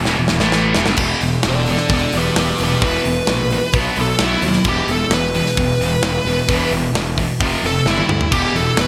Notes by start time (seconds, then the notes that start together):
Already playing: E3 B3 E4 G4
0.05 E1 E2 B2, snare
0.17 E1 E2 B2
0.28 E1 E2 B2, snare
0.40 A1 A2 E3 A3, snare
0.52 snare
0.75 E1 E2 B2, snare
0.86 G1 G2 D3, snare
0.96 E1 E2 B2, kick, crash
1.02 E3
1.21 E1 E2 B2, open hi-hat
1.43 E1 E2 B2, snare, open hi-hat
1.48 A4 D5
1.66 E2 B2, open hi-hat
1.71 A4 D5
1.77 snare
1.89 E1 E2 B2, kick, open hi-hat
1.94 A4 D5
2.12 E1 E2 B2, open hi-hat
2.17 G4 B4
2.36 E1 E2 B2 G4 B4, snare, open hi-hat
2.58 E1 E2 B2, open hi-hat
2.64 G4 B4
2.81 E1 E2 B2 E3, kick, open hi-hat
2.86 B4
3.05 E1 E2 B2, open hi-hat
3.27 A#1 E2 B2, snare, open hi-hat
3.50 E2 B2, open hi-hat
3.72 B1 B2, kick, open hi-hat
3.77 F#3 B3
3.96 B1 B2 F#3, open hi-hat
4.01 A4
4.19 B1 B2 F#3 B3, snare, open hi-hat
4.24 E4
4.42 D#2 B2 F#3, open hi-hat
4.53 snare
4.64 E1 E2 B2, kick, crash
4.69 E3 G4
4.87 E1 E2 B2 A4, open hi-hat
5.10 E1 E2 B2, snare, open hi-hat
5.14 B4
5.35 E2 B2 B4, open hi-hat
5.46 snare
5.56 E1 E2 B2, kick, open hi-hat
5.80 E1 E2 B2, open hi-hat
6.02 E1 E2 B2, snare, open hi-hat
6.25 E1 E2 B2, open hi-hat
6.48 E1 E2 B2 E3, kick, open hi-hat
6.71 E1 E2 B2, open hi-hat
6.93 E1 E2, snare, open hi-hat
6.97 B2
7.18 E2 B2, kick, open hi-hat
7.40 F1 F2 C3 F3, kick, open hi-hat
7.63 F1 F2 C3 A4, open hi-hat
7.85 G1 G2 D3 G3 E4, snare
7.98 high tom
8.09 D2 G2 D3, mid tom
8.21 floor tom
8.31 E1 E2 B2 E3 B3 E4 G4, kick, crash
8.53 E1 E2 B2 A4, open hi-hat
8.76 E1 E2 B2, snare, open hi-hat
8.81 B4